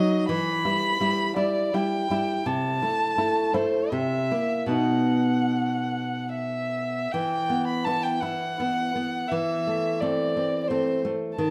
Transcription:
Already playing: F#3 D#4 D#5
0.29 E3 B5
0.65 G3 E4
1.00 G3 E4
1.36 G3 E4 D5
1.73 G3 E4 G5
2.10 G3 E4
2.46 C3 A5
2.82 A3 E4
3.18 A3 E4
3.54 A3 E4 C5
3.91 C3 E5
4.31 A#3 E4
4.66 B2 B3 D#4
4.72 F#5
6.34 E5
7.12 E3 G5
7.50 B3
7.68 B5
7.84 B3 E4 A5
8.03 G5
8.20 E4 F#5
8.60 B3 E4
8.95 B3
9.28 E3 E5
9.67 A3
10.00 A3 C4 D5
10.37 C4
10.62 D5
10.68 A3 C4 C5
11.05 A3
11.37 D#3 A5

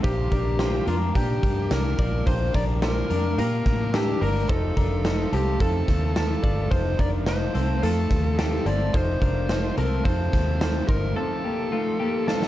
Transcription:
0.03 A#1 A#2 D3 F3 A#3 D4 F4 G4 A#4 C5, kick, closed hi-hat
0.32 A#1 F3 A#3 D4 G4 A#4, kick, closed hi-hat
0.59 A#2 D3 F3 A#3 D4 F4 G4 A#4 C5, snare, closed hi-hat
0.87 F2 F3 A#3 D4 F4 G4 A#4, closed hi-hat
1.14 A#2 F3 A#3 D4 G4 A#4, kick, closed hi-hat
1.43 G2 F3 A#3 D4 G4, kick, closed hi-hat
1.71 C2 A#2 D3 F3 A#3 D4 G4 A#4, snare, closed hi-hat
1.99 A#1 F3 A#3 D4 F4 G4 D5, kick, closed hi-hat
2.26 A#1 A#2 D3 F3 A#3 D4 F4 G4 A#4 C5, kick, closed hi-hat
2.54 A#1 F3 A#3 D4 G4 A#4 D5, kick, closed hi-hat
2.82 A#2 D3 F3 A#3 D4 F4 G4 A#4 C5, snare, closed hi-hat
3.10 F2 F3 A#3 D4 G4 A#4, closed hi-hat
3.37 A#2 F3 A#3 D4 F4 G4 A#4, closed hi-hat
3.65 A2 F3 A#3 D4 G4, kick, snare, closed hi-hat
3.94 A#2 D3 F3 A#3 D4 G4 A4 A#4, snare, closed hi-hat
4.21 G1 F3 A#3 D4 G4 A#4, open hi-hat
4.49 F1 F2 C3 D#3 A3 C4 D#4 F4 A4 C5, kick, closed hi-hat
4.77 F1 D#3 A3 C4 D4 F4 A#4, kick, closed hi-hat
5.05 F2 C3 D#3 A3 C4 D#4 F4 A4 C5, snare, closed hi-hat
5.32 C2 D#3 A3 C4 F4 G4 A4, closed hi-hat
5.60 F2 D#3 A3 C4 D#4 F4 A4, kick, closed hi-hat
5.88 D#2 D#3 A3 C4 F4, kick, snare, closed hi-hat
6.16 F2 C3 D#3 A3 C4 D#4 F4 A4, snare, closed hi-hat
6.43 G1 D#3 A3 C4 F4 D5, kick, closed hi-hat
6.71 F1 F2 C3 D#3 A3 C4 D#4 F4 A4 C5, kick, closed hi-hat
6.99 D#3 A3 C4 D4 F4 A#4 D5, kick, closed hi-hat
7.26 F2 C3 D#3 A3 C4 D#4 F4 C5, snare, closed hi-hat
7.55 C2 D#3 A3 C4 F4 A4, closed hi-hat
7.82 F2 D#3 A3 C4 D#4 F4 A4, closed hi-hat
8.10 D#2 D#3 A3 C4 F4, kick, snare, closed hi-hat
8.38 F2 C3 D#3 A3 C4 D#4 F4 G4 A4, snare, closed hi-hat
8.65 G1 D#3 A3 C4 F4 A4 D5, closed hi-hat
8.94 F1 F2 C3 D#3 A3 C4 D#4 F4 A4 C5, kick, closed hi-hat
9.22 F1 D#3 A3 C4 D4 F4 A#4, kick, closed hi-hat
9.49 F2 C3 D#3 A3 C4 D#4 F4 A4 C5, snare, closed hi-hat
9.78 C2 D#3 A3 C4 F4 A4 A#4, closed hi-hat
10.05 F2 D#3 A3 C4 D#4 F4 A4 C5, kick, closed hi-hat
10.33 D#2 D#3 A3 C4 F4, kick, snare, closed hi-hat
10.61 F2 C3 D#3 A3 C4 D#4 F4 A4 C5, snare, closed hi-hat
10.88 G1 D#3 A3 C4 D#4 F4 A#4 C5, kick, closed hi-hat
11.16 F2 C3 D#3 A3 C4 D#4 F4 A4
11.44 D#3 A3 A#3 C4 F4 G4
11.72 F2 C3 D#3 A3 C4 D#4 F4 A4
12.00 D#3 A3 A#3 C4 F4 G4
12.27 D#3 A3 C4 D#4 F4 A4, snare
12.42 snare

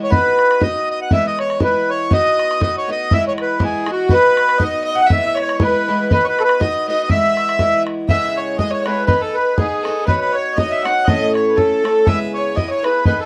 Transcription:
Already playing: G#3 E4
0.04 C#5
0.10 B3 D#4 F#4 B4, bodhran
0.39 bodhran
0.51 bodhran
0.60 B3 D#4 F#4 B4 D#5, bodhran
0.90 D#5
1.02 F#5
1.11 E3 G#3 B3 E4 E5, bodhran
1.27 D#5
1.39 C#5, bodhran
1.50 bodhran
1.60 E3 G#3 B3 E4 B4, bodhran
1.90 C#5
2.10 B3 D#4 F#4 B4 D#5, bodhran
2.39 bodhran
2.51 bodhran
2.60 B3 D#4 F#4 B4 D#5, bodhran
2.78 C#5
2.88 B3 D#4 F#4 B4 D#5
3.11 E3 G#3 B3 E4 E5, bodhran
3.28 C#5
3.38 B4, bodhran
3.59 E3 G#3 B3 E4, bodhran
3.64 G#4
3.86 E3 G#3 B3 E4, bodhran
3.92 F#4
4.09 B3 D#4 F#4 B4, bodhran
4.13 B4
4.37 bodhran
4.49 bodhran
4.58 B3 D#4 F#4 D#5, bodhran
4.63 B4 D#5
4.84 D#5
4.91 D#5
4.96 F#5
5.01 F#5
5.06 E3 E5, bodhran
5.11 G#3 B3 E4 E5
5.19 E5
5.26 E5
5.34 C#5, bodhran
5.42 C#5
5.49 bodhran
5.60 E3 G#3 B3 E4 B4, bodhran
5.88 E3 G#3 B3 E4
6.09 B3 D#4 F#4 B4, bodhran
6.24 B4 C#5
6.28 B4
6.39 A4 B4, bodhran
6.44 B4
6.49 bodhran
6.60 B3 D#4 F#4 B4 D#5, bodhran
6.88 B3 D#4 F#4 B4 D#5
7.03 D#5
7.09 E3 G#3 B3 E4 E5, bodhran
7.37 bodhran
7.49 bodhran
7.59 E3 G#3 B3 E4, bodhran
7.87 bodhran
8.08 C#3 G#3 B3 E4 G#4 E5, bodhran
8.37 C#5
8.58 G#3 B3 E4 G#4 D#5, bodhran
8.70 C#5
8.81 C#5
8.85 G#3 B3 E4 G#4 B4 C#5, bodhran
9.05 B3 D#4 G#4 B4, bodhran
9.10 B4
9.21 A4
9.34 B4
9.57 B3 D#4 G#4, bodhran
9.61 G#4 B4
9.83 B3 D#4 G#4 A4, bodhran
9.89 B4
10.05 B3 D#4 F#4 B4, bodhran
10.09 C#5
10.20 B4
10.33 C#5
10.55 B3 D#4 D#5, bodhran
10.59 F#4 C#5
10.71 E5
10.84 B3 D#4 F#4 C#5 F#5, bodhran
11.05 A2 A3 C#4 A4 D#5, bodhran
11.09 E4
11.34 C#5, bodhran
11.49 B4
11.56 A3 C#4 E4 A4, bodhran
11.84 A3 C#4 E4 A4, bodhran
12.06 C#3 G#3 B3 E4 G#4 B4 E5, bodhran
12.34 C#5
12.55 B3 E4 G#4 B4 D#5, bodhran
12.70 C#5
12.83 B3 E4 G#4 B4, bodhran
13.05 B3 D#4 G#4 B4, bodhran
13.20 A4

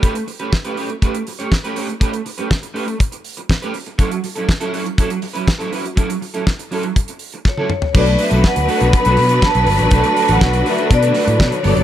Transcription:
0.02 A3 C#4 G4 B4, kick, closed hi-hat
0.14 muted clean electric guitar stroke, closed hi-hat
0.27 muted clean electric guitar stroke, open hi-hat
0.39 A3 C#4 G4 B4, closed hi-hat
0.52 muted clean electric guitar stroke, kick, snare
0.64 A3 C#4 G4 B4, closed hi-hat
0.77 A3 C#4 G4 B4, open hi-hat
0.89 muted clean electric guitar stroke, closed hi-hat
1.02 A3 C#4 G4 B4, kick, closed hi-hat
1.15 muted clean electric guitar stroke, closed hi-hat
1.27 muted clean electric guitar stroke, open hi-hat
1.39 A3 C#4 G4 C#5, closed hi-hat
1.52 muted clean electric guitar stroke, kick, snare
1.64 A3 C#4 G4 B4, closed hi-hat
1.76 A3 C#4 G4 C#5, open hi-hat
1.89 muted clean electric guitar stroke, closed hi-hat
2.00 A3 C#4 G4 B4, kick, closed hi-hat
2.13 muted clean electric guitar stroke, closed hi-hat
2.25 muted clean electric guitar stroke, open hi-hat
2.38 A3 C#4 G4 B4, closed hi-hat
2.50 muted clean electric guitar stroke, kick, snare
2.63 muted clean electric guitar stroke, closed hi-hat
2.74 A3 C#4 G4 B4, open hi-hat
2.86 muted clean electric guitar stroke, closed hi-hat
2.98 muted clean electric guitar stroke, kick, closed hi-hat
3.12 muted clean electric guitar stroke, closed hi-hat
3.24 open hi-hat
3.37 muted clean electric guitar stroke, closed hi-hat
3.49 muted clean electric guitar stroke, kick, snare
3.62 A3 C#4 G4 B4, closed hi-hat
3.74 muted clean electric guitar stroke, open hi-hat
3.86 muted clean electric guitar stroke, closed hi-hat
3.98 F#3 C#4 E4 A4, kick, closed hi-hat
4.11 muted clean electric guitar stroke, closed hi-hat
4.24 muted clean electric guitar stroke, open hi-hat
4.36 F#3 C#4 E4 A4, closed hi-hat
4.47 muted clean electric guitar stroke, kick, snare
4.60 F#3 C#4 E4 A4, closed hi-hat
4.72 F#3 C#4 E4 A4, open hi-hat
4.85 muted clean electric guitar stroke, closed hi-hat
4.98 F#3 C#4 E4 A4, kick, closed hi-hat
5.10 muted clean electric guitar stroke, closed hi-hat
5.22 muted clean electric guitar stroke, open hi-hat
5.33 F#3 C#4 E4 B4, closed hi-hat
5.47 muted clean electric guitar stroke, kick, snare
5.59 F#3 C#4 E4 A4, closed hi-hat
5.71 F#3 C#4 E4 B4, open hi-hat
5.84 muted clean electric guitar stroke, closed hi-hat
5.96 F#3 C#4 E4 A4, kick, closed hi-hat
6.10 muted clean electric guitar stroke, closed hi-hat
6.21 muted clean electric guitar stroke, open hi-hat
6.34 F#3 C#4 E4 A4, closed hi-hat
6.46 muted clean electric guitar stroke, kick, snare
6.59 muted clean electric guitar stroke, closed hi-hat
6.71 F#3 C#4 E4 A4, open hi-hat
6.83 muted clean electric guitar stroke, closed hi-hat
6.96 muted clean electric guitar stroke, kick, closed hi-hat
7.08 muted clean electric guitar stroke, closed hi-hat
7.19 open hi-hat
7.32 muted clean electric guitar stroke, closed hi-hat
7.45 C#5, muted clean electric guitar stroke, kick, snare
7.57 F#3 C#4 E4 A4, high tom
7.70 muted clean electric guitar stroke, mid tom
7.82 muted clean electric guitar stroke, floor tom
7.94 B1 D3 F#3 A3 B3 D4 F#4 A4 B4 D5, kick, crash
8.06 muted clean electric guitar stroke, closed hi-hat
8.19 A3 D4 F#4 B4, open hi-hat
8.23 E5
8.31 B1 A3 D4 F#4 A4, closed hi-hat
8.43 muted clean electric guitar stroke, kick, snare
8.47 F#5
8.56 D2, muted clean electric guitar stroke, closed hi-hat
8.68 A3 D4 F#4 A4, open hi-hat
8.80 B1 A3 D4 F#4 A4, closed hi-hat
8.93 B5, muted clean electric guitar stroke, kick, closed hi-hat
9.05 B1 A3 D4 F#4 A4, closed hi-hat
9.17 B2, muted clean electric guitar stroke, open hi-hat
9.29 muted clean electric guitar stroke, closed hi-hat
9.42 A5, muted clean electric guitar stroke, kick, snare
9.55 B1, muted clean electric guitar stroke, closed hi-hat
9.66 G1, open hi-hat
9.79 A1, muted clean electric guitar stroke, closed hi-hat
9.91 B1 A3 D4 F#4 A4, kick, closed hi-hat
9.95 A5
10.04 muted clean electric guitar stroke, closed hi-hat
10.16 A3 D4 F#4 A4, open hi-hat
10.28 A1 A3 D4 F#4 A4 F#5, closed hi-hat
10.41 B1, muted clean electric guitar stroke, kick, snare
10.52 muted clean electric guitar stroke, closed hi-hat
10.66 A3 D4 F#4 B4 E5, open hi-hat
10.78 A3 D4 F#4 A4, closed hi-hat
10.90 B2, muted clean electric guitar stroke, kick, closed hi-hat
10.94 D5
11.02 A3 D4 F#4 A4, closed hi-hat
11.13 A3 D4 F#4 B4, open hi-hat
11.26 A2, muted clean electric guitar stroke, closed hi-hat
11.40 B2 C#5, kick, snare
11.51 muted clean electric guitar stroke, closed hi-hat
11.63 G1 F#3 G3 B3 D4 A4 D5, open hi-hat
11.76 F#1, muted clean electric guitar stroke, closed hi-hat

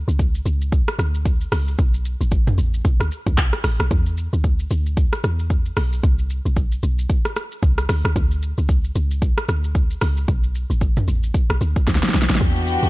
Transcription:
0.08 C#2, shaker
0.19 kick, shaker
0.35 shaker
0.46 C#2, shaker
0.61 shaker
0.72 kick, shaker
0.88 cross-stick, shaker
0.99 D2, cross-stick, shaker
1.15 shaker
1.25 kick, shaker
1.41 shaker
1.52 C#2, cross-stick, open hi-hat, shaker
1.68 shaker
1.79 B1, kick, shaker
1.94 shaker
2.05 shaker
2.21 A1, shaker
2.32 kick, shaker
2.47 mid tom, shaker
2.58 A1, shaker
2.74 shaker
2.85 B1, kick, shaker
3.00 D2, cross-stick, shaker
3.11 shaker
3.27 D2, kick, shaker
3.38 B1, kick, clap, shaker
3.53 cross-stick, shaker
3.64 A1, cross-stick, open hi-hat, shaker
3.80 B1, cross-stick, shaker
3.91 E2, kick, shaker
4.06 shaker
4.18 shaker
4.33 D2, shaker
4.44 kick, shaker
4.60 shaker
4.71 D2, shaker
4.86 shaker
4.97 kick, shaker
5.13 cross-stick, shaker
5.24 E2, cross-stick, shaker
5.39 shaker
5.50 kick, shaker
5.66 shaker
5.77 B1, cross-stick, open hi-hat, shaker
5.92 shaker
6.03 C2, kick, shaker
6.19 shaker
6.30 shaker
6.45 B1, shaker
6.56 kick, shaker
6.72 shaker
6.83 B1, shaker
6.99 shaker
7.10 kick, shaker
7.25 cross-stick, shaker
7.36 cross-stick, shaker
7.52 shaker
7.63 C2, kick, shaker
7.78 cross-stick, shaker
7.89 D2, cross-stick, open hi-hat, shaker
8.05 D2, cross-stick, shaker
8.16 D2, kick, shaker
8.31 shaker
8.43 shaker
8.58 C#2, shaker
8.69 kick, shaker
8.84 shaker
8.95 C#2, shaker
9.11 shaker
9.22 kick, shaker
9.38 cross-stick, shaker
9.49 D2, cross-stick, shaker
9.64 shaker
9.75 kick, shaker
9.90 shaker
10.01 C#2, cross-stick, open hi-hat, shaker
10.17 shaker
10.28 B1, kick, shaker
10.44 shaker
10.55 shaker
10.70 A1, shaker
10.81 kick, shaker
10.97 mid tom, shaker
11.08 A1, shaker
11.23 shaker
11.34 kick, shaker
11.50 B1, cross-stick, shaker
11.61 D2, shaker
11.76 kick, shaker
11.88 D2, kick, snare, shaker
11.95 snare
12.03 snare, shaker
12.09 snare
12.14 B1, snare, open hi-hat, shaker
12.22 snare
12.30 A1, snare, shaker
12.35 snare
12.41 E2 E3 B3 D4 F#4 G4, kick, shaker
12.56 shaker
12.67 shaker
12.83 D2, shaker

